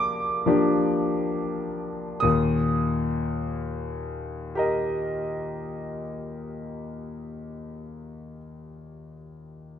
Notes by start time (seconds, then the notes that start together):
Already playing: F3 A#3 D4 G4 D6
0.46 F3 A#3 D4 G4
2.20 D#2 A#2 D#6
4.55 G4 A#4 D#5